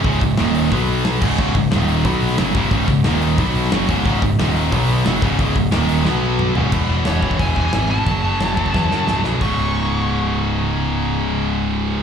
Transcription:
<<
  \new Staff \with { instrumentName = "Lead electric guitar" } { \time 4/4 \key cis \minor \tempo 4 = 180 r1 | r1 | r1 | r1 |
r1 | r4 cis''4 gis''8. gis''8. a''8~ | a''2.~ a''8 r8 | cis'''1~ |
cis'''1 | }
  \new Staff \with { instrumentName = "Distorted electric guitar" } { \clef bass \time 4/4 \key cis \minor <cis, gis, cis>8 <cis, gis,>8 <dis, ais, dis>4 <b, fis b>4. <cis, gis, cis>8 | <cis, gis, cis>8 <cis, gis,>8 <dis, ais, dis>4 <b, fis b>4 <fis, cis fis>8 <cis, gis, cis>8 | <cis, gis, cis>8 <cis, gis,>8 <dis, ais, dis>4 <b, fis b>4 <fis, cis fis>8 <cis, gis, cis>8 | <cis, gis, cis>8 <cis, gis,>8 <dis, ais, dis>4 <b, fis b>4 <fis, cis fis>8 <cis, gis, cis>8 |
<cis, gis, cis>8 <cis, gis,>8 <dis, ais, dis>4 <b, fis b>4. <cis, gis, cis>8 | <e, b, e>8 <e, b, e>8 <e, b, e>8 <e, b, e>8 <e, b, e>8 <e, b, e>8 <e, b, e>8 <e, b, e>8 | <fis, cis fis>8 <fis, cis fis>8 <fis, cis fis>8 <fis, cis fis>8 <fis, cis fis>8 <fis, cis fis>8 <fis, cis fis>8 <fis, cis fis>8 | <cis, gis, cis>1~ |
<cis, gis, cis>1 | }
  \new Staff \with { instrumentName = "Distorted electric guitar" } { \clef bass \time 4/4 \key cis \minor <cis, gis, cis>8 <cis, gis,>8 <dis, ais, dis>4 <b, fis b>4. <cis, gis, cis>8 | <cis, gis, cis>8 <cis, gis,>8 <dis, ais, dis>4 <b, fis b>4 <fis, cis fis>8 <cis, gis, cis>8 | <cis, gis, cis>8 <cis, gis,>8 <dis, ais, dis>4 <b, fis b>4 <fis, cis fis>8 <cis, gis, cis>8 | <cis, gis, cis>8 <cis, gis,>8 <dis, ais, dis>4 <b, fis b>4 <fis, cis fis>8 <cis, gis, cis>8 |
<cis, gis, cis>8 <cis, gis,>8 <dis, ais, dis>4 <b, fis b>4. <cis, gis, cis>8 | <e, b, e>8 <e, b, e>8 <e, b, e>8 <e, b, e>8 <e, b, e>8 <e, b, e>8 <e, b, e>8 <e, b, e>8 | <fis, cis fis>8 <fis, cis fis>8 <fis, cis fis>8 <fis, cis fis>8 <fis, cis fis>8 <fis, cis fis>8 <fis, cis fis>8 <fis, cis fis>8 | <cis, gis, cis>1~ |
<cis, gis, cis>1 | }
  \new Staff \with { instrumentName = "Distorted electric guitar" } { \clef bass \time 4/4 \key cis \minor <cis, gis, cis>8 <cis, gis,>8 <dis, ais, dis>4 <b, fis b>4. <cis, gis, cis>8 | <cis, gis, cis>8 <cis, gis,>8 <dis, ais, dis>4 <b, fis b>4 <fis, cis fis>8 <cis, gis, cis>8 | <cis, gis, cis>8 <cis, gis,>8 <dis, ais, dis>4 <b, fis b>4 <fis, cis fis>8 <cis, gis, cis>8 | <cis, gis, cis>8 <cis, gis,>8 <dis, ais, dis>4 <b, fis b>4 <fis, cis fis>8 <cis, gis, cis>8 |
<cis, gis, cis>8 <cis, gis,>8 <dis, ais, dis>4 <b, fis b>4. <cis, gis, cis>8 | r1 | r1 | r1 |
r1 | }
  \new Staff \with { instrumentName = "Picked electric bass" } { \clef bass \time 4/4 \key cis \minor cis,,8 cis,,8 dis,,4 b,,4. cis,,8 | cis,,8 cis,,8 dis,,4 b,,4 fis,,8 cis,,8 | cis,,8 cis,,8 dis,,4 b,,4 fis,,8 cis,,8 | cis,,8 cis,,8 dis,,4 b,,4 fis,,8 cis,,8 |
cis,,8 cis,,8 dis,,4 b,,4. cis,,8 | e,,4 e,,8 e,,8 e,,4 gis,,4 | fis,,4 fis,,4 e,8 fis,8 cis,,8 b,,8 | cis,,1~ |
cis,,1 | }
  \new DrumStaff \with { instrumentName = "Drums" } \drummode { \time 4/4 <hho bd>8 <hho bd>8 <hho sn>8 hho8 <hho bd>8 hho8 <hho sn>8 <cymc bd>8 | bd8 <hho bd>8 <hho sn>8 hho8 <hho bd>8 hho16 sn16 <hho sn>8 <hho bd>8 | <hho bd>8 <hho bd sn>8 <hho sn>8 hho8 <hho bd>8 hho16 sn16 <hho sn>8 <hho bd>8 | <hho bd>8 <hho bd>8 <hho sn>8 hho8 <hho bd>8 hho8 <hho sn>8 <hho bd>8 |
<hho bd>8 <hho bd>8 <hho sn>8 hho8 sn4 toml8 tomfh8 | <cymc bd>4 <hho sn>8 bd16 bd16 <hho bd>8 bd8 <hho sn>4 | <hho bd>4 <hho sn>8 bd16 bd16 <bd sn>8 sn8 sn8 sn8 | <hho bd>4 r4 r4 r4 |
r4 r4 r4 r4 | }
>>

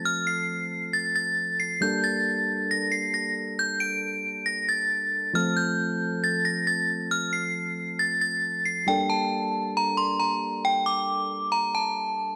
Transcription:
<<
  \new Staff \with { instrumentName = "Synth bell" } { \time 4/4 \key g \minor \tempo 4 = 136 f'''8 c''''4. a'''8 a'''4 c''''8 | g'''8 a'''4. bes'''8 c''''8 bes'''8 r8 | g'''8 d''''4. bes'''8 a'''4. | f'''8 g'''4. a'''8 bes'''8 a'''8 r8 |
f'''8 c''''4. a'''8 a'''4 c''''8 | g''8 a''4. bes''8 c'''8 bes''8 r8 | g''8 d'''4. bes''8 a''4. | }
  \new Staff \with { instrumentName = "Synth keys" } { \time 4/4 \key g \minor <f a c' a'>1 | <g bes d' a'>1~ | <g bes d' a'>1 | <f a c' a'>1~ |
<f a c' a'>1 | <g bes d' a'>1~ | <g bes d' a'>1 | }
>>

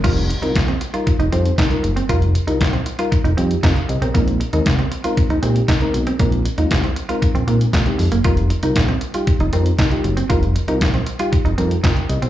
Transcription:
<<
  \new Staff \with { instrumentName = "Clean electric guitar" } { \time 4/4 \key f \minor \tempo 4 = 117 f'16 r8 ees'16 r16 c'16 r16 f'16 r16 ees'16 c'16 r16 ees'16 r8 c'16 | f'16 r8 ees'16 r16 c'16 r16 f'16 r16 ees'16 c'16 r16 ees'16 r8 c'16 | bes16 r8 ees'16 r16 c'16 r16 f'16 r16 ees'16 c'16 r16 ees'16 r8 c'16 | bes16 r8 ees'16 r16 c'16 r16 f'16 r16 c'16 bes16 r16 aes16 r8 bes16 |
f'16 r8 ees'16 r16 c'16 r16 f'16 r16 ees'16 c'16 r16 ees'16 r8 c'16 | f'16 r8 ees'16 r16 c'16 r16 f'16 r16 ees'16 c'16 r16 ees'16 r8 c'16 | }
  \new Staff \with { instrumentName = "FM electric piano" } { \time 4/4 \key f \minor << { r1 | r2. f''8 <g' ees''>16 bes'16~ | bes'16 r2. r8. | r1 |
r1 | r2. <bes' g''>8 <g' ees''>16 <ees' c''>16 | } \\ { <g ees' f' bes'>16 r8 <g ees' f' bes'>8 r8 <g ees' f' bes'>16 r8 <g ees' f' c''>16 r8 <g ees' f' bes'>16 r8 | <g ees' f' bes'>16 r8 <g ees' f' bes'>8 r8 <g ees' f' bes'>16 r8 <g ees' f' g'>16 r4 r16 | <aes c' ees' bes'>16 r8 <aes c' ees' bes'>8 r8 <aes c' ees' bes'>16 r8 <aes c' ees' g'>16 r8 <aes c' ees' bes'>16 r8 | <aes c' ees' bes'>16 r8 <aes c' ees' f'>8 r8 <aes c' ees' bes'>16 r8 <aes c' ees' bes'>16 r8 <aes c' ees' g'>16 r8 |
<g ees' f' bes'>16 r8 <g ees' f' bes'>8 r8 <g ees' f' g'>16 r8 <g ees' f' bes'>16 r8 <g ees' f' g'>16 r8 | <g ees' f' bes'>16 r8 <g ees' f' bes'>8 r8 <g ees' f' g'>16 r8 <g ees' f' bes'>16 r4 r16 | } >> }
  \new Staff \with { instrumentName = "Analog synth bass" } { \clef bass \time 4/4 \key f \minor f,,8. c,16 bes,,8 r8. f,,16 f,8 r8 ges,,8 | f,,8. c,16 bes,,8 r8. f,,16 f,8 f,16 r16 c,16 b,,16 | bes,,8. ees,16 c,8 r8. bes,,16 bes,8 r8 b,,8 | bes,,8. ees,16 c,8 r8. bes,,16 bes,8 bes,16 r16 f,16 ges,,16 |
f,,8. c,16 bes,,8 r8. f,,16 f,8 r8 ges,,8 | f,,8. c,16 bes,,8 r8. f,,16 f,8 f,16 r16 c,16 b,,16 | }
  \new DrumStaff \with { instrumentName = "Drums" } \drummode { \time 4/4 <cymc hh bd>16 hh16 hh16 hh16 <hc hh bd sn>16 hh16 hh16 hh16 <hh bd>16 hh16 hh16 hh16 <hc hh bd sn>16 hh16 hh16 hh16 | <hh bd>16 hh16 hh16 hh16 <hc hh bd sn>16 hh16 hh16 hh16 <hh bd>16 hh16 hh16 hh16 <hc hh bd sn>16 hh16 hh16 hh16 | <hh bd>16 hh16 hh16 hh16 <hc hh bd sn>16 hh16 hh16 hh16 <hh bd>16 hh16 hh16 hh16 <hc hh bd sn>16 hh16 hh16 hh16 | <hh bd>16 hh16 hh16 hh16 <hc hh bd sn>16 hh16 hh16 hh16 <hh bd>16 hh16 hh16 hh16 <hc hh bd sn>16 hh16 hho16 hh16 |
<hh bd>16 hh16 hh16 hh16 <hc hh bd sn>16 hh16 hh16 hh16 <hh bd>16 hh16 hh16 hh16 <hc hh bd sn>16 hh16 hh16 hh16 | <hh bd>16 hh16 hh16 hh16 <hc hh bd sn>16 hh16 hh16 hh16 <hh bd>16 hh16 hh16 hh16 <hc hh bd sn>16 hh16 hh16 hh16 | }
>>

